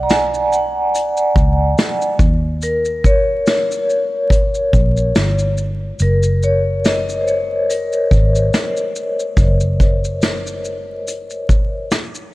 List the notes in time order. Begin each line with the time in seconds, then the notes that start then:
Already playing: B1 D5 F#5
0.03 A#5
0.10 G#5, snare, closed hi-hat, shaker
0.34 shaker
0.52 F#5, shaker
0.94 D5, closed hi-hat, shaker
1.17 shaker
1.36 C#2, kick, shaker
1.78 snare, closed hi-hat, shaker
2.02 shaker
2.19 D#2, kick, shaker
2.62 A#4, closed hi-hat, shaker
2.85 shaker
3.04 C#5, kick, shaker
3.47 C#5, snare, closed hi-hat, shaker
3.71 shaker
3.90 shaker
4.30 kick, closed hi-hat, shaker
4.55 shaker
4.73 A#1, kick, shaker
4.97 shaker
5.16 G1, snare, closed hi-hat, shaker
5.39 shaker
5.58 shaker
5.99 F#1 A#4, closed hi-hat, shaker
6.23 shaker
6.43 C#5, shaker
6.85 D#5, snare, closed hi-hat, shaker
7.09 shaker
7.21 C5
7.27 C#5, shaker
7.70 A#4, closed hi-hat, shaker
7.93 shaker
8.11 G#1, kick, shaker
8.35 shaker
8.54 snare, closed hi-hat, shaker
8.77 shaker
8.96 shaker
9.20 shaker
9.37 F#1, kick, closed hi-hat, shaker
9.61 shaker
9.80 kick, shaker
10.05 shaker
10.22 snare, closed hi-hat, shaker
10.47 shaker
10.65 shaker
11.08 closed hi-hat, shaker
11.30 shaker
11.49 kick, shaker
11.91 snare, closed hi-hat, shaker
12.15 shaker